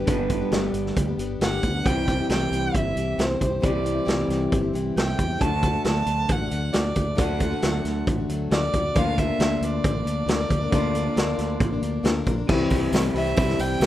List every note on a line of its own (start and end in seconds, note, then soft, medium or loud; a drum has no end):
0.00 0.76 B4 medium
0.07 0.42 G1 medium
0.07 0.19 G2 medium
0.07 0.19 D3 medium
0.07 0.19 G3 medium
0.07 0.18 B3 medium
0.07 0.18 D4 medium
0.07 0.17 G4 medium
0.07 kick loud
0.07 closed hi-hat medium
0.18 0.28 G3 soft
0.18 0.29 B3 soft
0.18 0.30 D4 soft
0.18 0.30 G4 soft
0.29 0.41 G3 medium
0.29 0.40 B3 medium
0.29 0.40 D4 medium
0.29 0.38 G4 medium
0.29 kick medium
0.29 closed hi-hat medium
0.40 0.52 G3 soft
0.40 0.53 B3 soft
0.40 0.52 D4 medium
0.40 0.51 G4 medium
0.51 0.69 G1 medium
0.51 1.08 G2 medium
0.51 1.09 D3 medium
0.51 1.10 G3 medium
0.51 1.08 B3 medium
0.51 1.07 D4 medium
0.51 1.07 G4 loud
0.51 snare loud
0.51 closed hi-hat medium
0.73 0.91 G1 medium
0.73 closed hi-hat medium
0.86 snare soft
0.96 1.14 D2 medium
0.96 kick loud
0.96 closed hi-hat medium
1.08 1.17 G3 soft
1.08 1.19 B3 soft
1.08 1.19 D4 soft
1.08 1.19 G4 medium
1.17 1.35 G1 medium
1.17 1.40 G3 medium
1.17 1.40 B3 medium
1.17 1.41 D4 medium
1.17 1.42 G4 medium
1.17 closed hi-hat medium
1.40 1.57 G1 medium
1.40 1.63 G2 medium
1.40 1.64 D3 medium
1.40 1.61 G3 medium
1.40 1.62 B3 medium
1.40 1.63 D4 medium
1.40 1.64 G4 medium
1.40 1.87 F#5 loud
1.40 snare loud
1.40 closed hi-hat medium
1.62 1.80 D2 medium
1.62 1.74 G3 medium
1.62 1.74 B3 medium
1.62 1.74 D4 medium
1.62 1.73 G4 medium
1.62 kick medium
1.62 closed hi-hat medium
1.75 1.85 G3 soft
1.75 1.85 B3 soft
1.75 1.86 D4 medium
1.75 1.86 G4 medium
1.84 2.20 C2 medium
1.84 2.07 C3 medium
1.84 2.07 E3 medium
1.84 3.62 G3 medium
1.84 2.08 C4 medium
1.84 2.08 E4 medium
1.84 2.09 G4 medium
1.84 2.30 G5 loud
1.84 kick loud
1.84 closed hi-hat medium
2.08 2.19 E3 medium
2.08 2.20 C4 medium
2.08 2.20 E4 medium
2.08 2.20 G4 medium
2.08 kick medium
2.08 closed hi-hat medium
2.21 2.31 C4 soft
2.21 2.31 E4 soft
2.21 2.31 G4 soft
2.29 2.47 C2 medium
2.29 2.86 C3 medium
2.29 2.87 E3 medium
2.29 2.87 C4 medium
2.29 2.86 E4 medium
2.29 2.85 G4 medium
2.29 2.77 G5 loud
2.29 snare medium
2.29 closed hi-hat medium
2.51 2.69 C2 medium
2.51 closed hi-hat medium
2.75 2.92 G1 medium
2.75 3.22 E5 loud
2.75 kick loud
2.75 closed hi-hat medium
2.86 2.95 C4 soft
2.86 2.96 E4 soft
2.86 2.97 G4 soft
2.96 3.13 C2 medium
2.96 3.17 E3 medium
2.96 3.17 C4 medium
2.96 3.18 E4 medium
2.96 3.18 G4 medium
2.96 closed hi-hat medium
3.18 3.36 C2 medium
3.18 3.41 C3 medium
3.18 3.38 E3 medium
3.18 3.40 C4 medium
3.18 3.41 E4 medium
3.18 3.41 G4 medium
3.18 3.67 C5 medium
3.18 snare loud
3.18 closed hi-hat medium
3.40 3.59 C2 medium
3.40 3.52 E3 medium
3.40 3.52 C4 medium
3.40 3.51 E4 medium
3.40 3.49 G4 medium
3.40 kick medium
3.40 closed hi-hat medium
3.50 3.61 C4 soft
3.50 3.61 E4 soft
3.50 3.61 G4 medium
3.61 3.98 C2 medium
3.61 3.73 C3 medium
3.61 3.73 E3 medium
3.61 5.40 G3 medium
3.61 3.74 C4 medium
3.61 3.73 E4 medium
3.61 3.71 G4 medium
3.61 kick loud
3.61 closed hi-hat medium
3.65 4.53 D5 medium
3.72 3.83 C4 soft
3.72 3.83 E4 soft
3.72 3.84 G4 soft
3.83 3.95 E3 medium
3.83 3.94 C4 medium
3.83 3.93 E4 medium
3.83 3.92 G4 medium
3.83 closed hi-hat medium
3.93 4.05 C4 soft
3.93 4.05 E4 soft
3.93 4.05 G4 soft
4.05 4.25 C2 medium
4.05 4.62 C3 medium
4.05 4.62 E3 medium
4.05 4.63 C4 medium
4.05 4.62 E4 medium
4.05 4.61 G4 medium
4.05 snare loud
4.05 closed hi-hat medium
4.28 4.46 C2 medium
4.28 snare soft
4.28 closed hi-hat medium
4.52 4.70 G1 medium
4.52 kick loud
4.52 closed hi-hat medium
4.62 4.73 C4 soft
4.62 4.74 E4 soft
4.62 4.74 G4 medium
4.73 4.91 C2 medium
4.73 4.96 E3 medium
4.73 4.96 C4 medium
4.73 4.97 E4 medium
4.73 4.97 G4 medium
4.73 closed hi-hat medium
4.96 5.14 C2 medium
4.96 5.19 C3 medium
4.96 5.17 E3 medium
4.96 5.18 C4 medium
4.96 5.18 E4 medium
4.96 5.19 G4 medium
4.96 5.43 G5 medium
4.96 snare loud
4.96 closed hi-hat medium
5.18 5.36 E2 medium
5.18 5.29 E3 medium
5.18 5.30 C4 medium
5.18 5.29 E4 medium
5.18 5.28 G4 medium
5.18 kick medium
5.18 closed hi-hat medium
5.29 5.41 C4 soft
5.29 5.41 E4 soft
5.29 5.41 G4 medium
5.41 5.75 D2 medium
5.41 5.52 D3 medium
5.41 5.53 F#3 medium
5.41 5.53 A3 medium
5.41 5.52 D4 medium
5.41 5.51 F#4 medium
5.41 5.85 A5 loud
5.41 kick loud
5.41 closed hi-hat medium
5.52 5.63 A3 soft
5.52 5.64 D4 soft
5.52 5.63 F#4 soft
5.63 5.75 F#3 medium
5.63 5.75 A3 medium
5.63 5.75 D4 medium
5.63 5.74 F#4 medium
5.63 kick medium
5.63 closed hi-hat medium
5.75 5.84 A3 soft
5.75 5.85 D4 soft
5.75 5.86 F#4 soft
5.85 6.02 D2 medium
5.85 6.72 D3 medium
5.85 6.41 F#3 medium
5.85 6.41 A3 medium
5.85 6.42 D4 medium
5.85 6.38 F#4 medium
5.85 6.33 A5 loud
5.85 snare loud
5.85 closed hi-hat medium
6.06 6.24 D2 medium
6.06 closed hi-hat medium
6.29 6.47 A1 medium
6.29 6.75 F#5 loud
6.29 kick loud
6.29 closed hi-hat medium
6.40 6.49 A3 soft
6.40 6.50 D4 soft
6.40 6.51 F#4 medium
6.49 6.69 D2 medium
6.49 6.72 F#3 soft
6.49 6.72 A3 medium
6.49 6.72 D4 medium
6.49 6.73 F#4 medium
6.49 closed hi-hat medium
6.72 6.92 D2 medium
6.72 6.95 D3 medium
6.72 6.93 F#3 medium
6.72 6.94 A3 medium
6.72 6.95 D4 medium
6.72 6.95 F#4 medium
6.72 7.20 D5 medium
6.72 snare loud
6.72 closed hi-hat medium
6.94 7.14 D2 medium
6.94 7.06 F#3 medium
6.94 7.07 A3 medium
6.94 7.06 D4 medium
6.94 7.05 F#4 medium
6.94 kick medium
6.94 closed hi-hat medium
7.06 7.15 A3 soft
7.06 7.16 D4 soft
7.06 7.16 F#4 soft
7.15 7.53 D2 medium
7.15 7.39 D3 medium
7.15 7.37 F#3 medium
7.15 7.38 A3 medium
7.15 7.38 D4 medium
7.15 7.40 F#4 medium
7.15 8.07 F#5 medium
7.15 kick loud
7.15 closed hi-hat medium
7.38 7.50 F#3 medium
7.38 7.51 A3 medium
7.38 7.50 D4 medium
7.38 7.49 F#4 medium
7.38 kick medium
7.38 closed hi-hat medium
7.51 7.62 A3 soft
7.51 7.63 D4 soft
7.51 7.62 F#4 soft
7.62 7.80 D2 medium
7.62 8.51 D3 medium
7.62 8.18 F#3 medium
7.62 8.19 A3 medium
7.62 8.19 D4 medium
7.62 8.17 F#4 medium
7.62 snare loud
7.62 closed hi-hat medium
7.84 8.02 D2 medium
7.84 snare soft
7.84 closed hi-hat medium
8.07 8.24 A1 medium
8.07 kick loud
8.07 closed hi-hat medium
8.18 8.29 A3 soft
8.18 8.30 D4 medium
8.18 8.29 F#4 medium
8.28 8.46 D2 medium
8.28 8.51 F#3 medium
8.28 8.51 A3 medium
8.28 8.52 D4 medium
8.28 8.52 F#4 medium
8.28 closed hi-hat medium
8.51 8.68 D2 medium
8.51 8.63 D3 medium
8.51 8.63 F#3 medium
8.51 8.63 A3 medium
8.51 8.62 D4 medium
8.51 8.60 F#4 medium
8.51 8.97 D5 loud
8.51 snare loud
8.51 closed hi-hat medium
8.62 8.72 A3 soft
8.62 8.73 F#4 soft
8.72 8.91 D2 medium
8.72 8.84 F#3 medium
8.72 8.84 A3 medium
8.72 8.84 D4 medium
8.72 8.82 F#4 medium
8.72 kick medium
8.72 closed hi-hat medium
8.83 8.96 A3 soft
8.83 8.95 D4 soft
8.83 8.95 F#4 soft
8.94 9.30 D2 loud
8.94 9.06 D3 medium
8.94 9.07 F3 medium
8.94 9.07 A#3 medium
8.94 9.06 D4 medium
8.94 10.72 F4 loud
8.94 9.04 A#4 medium
8.94 9.20 F5 loud
8.94 kick loud
8.94 closed hi-hat medium
9.05 9.17 A#3 soft
9.05 9.18 D4 soft
9.05 9.17 A#4 medium
9.16 9.28 F3 medium
9.16 9.29 A#3 medium
9.16 9.28 D4 medium
9.16 9.27 A#4 medium
9.16 9.65 E5 loud
9.16 kick medium
9.16 closed hi-hat medium
9.28 9.40 A#3 soft
9.28 9.40 D4 soft
9.28 9.40 A#4 medium
9.39 9.56 D2 medium
9.39 9.96 D3 medium
9.39 9.96 F3 medium
9.39 9.96 A#3 medium
9.39 9.93 A#4 medium
9.39 snare loud
9.39 closed hi-hat medium
9.43 9.95 D4 medium
9.61 9.79 D2 medium
9.61 12.06 D5 medium
9.61 closed hi-hat medium
9.84 10.02 A1 medium
9.84 kick loud
9.84 closed hi-hat medium
9.94 10.05 A#3 soft
9.94 10.06 D4 soft
9.94 10.06 A#4 soft
10.05 10.23 D2 medium
10.05 10.27 F3 medium
10.05 10.27 A#3 medium
10.05 10.28 D4 medium
10.05 10.28 A#4 medium
10.05 closed hi-hat medium
10.26 10.44 D2 medium
10.26 10.39 D3 medium
10.26 10.40 F3 medium
10.26 10.39 A#3 medium
10.26 10.39 D4 medium
10.26 10.38 A#4 medium
10.26 snare loud
10.26 closed hi-hat medium
10.39 10.49 A#3 soft
10.39 10.50 D4 soft
10.39 10.50 A#4 medium
10.49 10.68 D2 medium
10.49 10.61 F3 medium
10.49 10.61 A#3 medium
10.49 10.61 D4 medium
10.49 10.60 A#4 medium
10.49 kick medium
10.49 closed hi-hat medium
10.61 10.73 A#3 soft
10.61 10.73 D4 medium
10.61 10.72 A#4 medium
10.72 11.07 D2 medium
10.72 10.95 D3 medium
10.72 10.93 F3 loud
10.72 10.94 A#3 loud
10.72 10.95 D4 medium
10.72 12.48 F4 loud
10.72 10.96 A#4 loud
10.72 kick loud
10.72 closed hi-hat medium
10.94 11.06 F3 medium
10.94 11.06 A#3 medium
10.94 11.05 D4 medium
10.94 11.04 A#4 medium
10.94 closed hi-hat medium
11.06 11.17 A#3 medium
11.06 11.17 D4 medium
11.06 11.17 A#4 medium
11.16 11.34 D2 medium
11.16 11.72 D3 loud
11.16 11.72 F3 medium
11.16 11.72 A#3 medium
11.16 11.71 D4 loud
11.16 11.69 A#4 medium
11.16 snare loud
11.16 closed hi-hat medium
11.38 11.56 D2 medium
11.38 snare soft
11.38 closed hi-hat medium
11.60 11.78 A1 medium
11.60 kick loud
11.60 closed hi-hat medium
11.70 11.81 A#3 soft
11.70 11.82 D4 medium
11.70 11.82 A#4 medium
11.81 11.99 D2 medium
11.81 12.03 F3 medium
11.81 12.03 A#3 medium
11.81 12.03 D4 medium
11.81 12.03 A#4 medium
11.81 closed hi-hat medium
12.03 12.21 D2 medium
12.03 12.15 D3 medium
12.03 12.16 F3 medium
12.03 12.16 A#3 medium
12.03 12.14 D4 medium
12.03 12.13 A#4 medium
12.03 snare loud
12.03 closed hi-hat medium
12.14 12.25 A#3 soft
12.14 12.26 D4 soft
12.14 12.26 A#4 medium
12.25 12.44 A#1 medium
12.25 12.37 F3 medium
12.25 12.38 A#3 medium
12.25 12.37 D4 medium
12.25 12.35 A#4 medium
12.25 kick medium
12.25 closed hi-hat medium
12.36 12.50 A#3 medium
12.36 12.49 D4 medium
12.36 12.48 A#4 medium
12.48 12.70 C2 medium
12.48 12.71 C3 medium
12.48 12.69 E3 loud
12.48 12.91 G3 medium
12.48 12.70 C4 loud
12.48 12.71 E4 loud
12.48 12.72 G4 loud
12.48 kick loud
12.48 crash loud
12.70 12.92 C2 medium
12.70 12.92 E3 medium
12.70 12.92 C4 medium
12.70 12.93 E4 medium
12.70 12.94 G4 medium
12.70 kick medium
12.70 open hi-hat medium
12.70 tambourine medium
12.92 13.13 C2 loud
12.92 13.04 C3 loud
12.92 13.04 E3 medium
12.92 13.15 G3 medium
12.92 13.05 C4 loud
12.92 13.05 E4 loud
12.92 13.04 G4 loud
12.92 snare loud
12.92 open hi-hat medium
12.92 tambourine loud
13.05 13.14 C4 soft
13.05 13.15 E4 medium
13.05 13.15 G4 medium
13.05 tambourine soft
13.14 13.35 C2 medium
13.14 13.26 E3 medium
13.14 13.35 G3 medium
13.14 13.27 C4 medium
13.14 13.25 E4 medium
13.14 13.24 G4 medium
13.14 13.62 E5 medium
13.14 open hi-hat medium
13.25 13.48 C4 medium
13.25 13.48 E4 soft
13.25 13.46 G4 medium
13.25 tambourine soft
13.35 13.58 C2 loud
13.35 13.80 E3 medium
13.35 13.81 G3 medium
13.35 13.81 C4 medium
13.35 13.81 E4 medium
13.35 kick loud
13.35 open hi-hat medium
13.35 tambourine medium
13.47 13.58 C4 soft
13.47 13.59 E4 medium
13.47 13.59 G4 medium
13.47 snare soft
13.47 tambourine soft
13.58 13.80 C2 medium
13.58 13.81 E3 medium
13.58 13.81 C4 medium
13.58 13.81 E4 medium
13.58 13.82 G4 medium
13.58 13.86 G5 loud
13.58 open hi-hat medium
13.58 tambourine medium
13.80 13.86 C2 loud
13.80 13.86 C3 medium
13.80 13.86 E3 medium
13.80 13.86 G3 loud
13.80 13.86 C4 medium
13.80 13.86 E4 medium
13.80 snare loud
13.80 open hi-hat medium
13.80 tambourine loud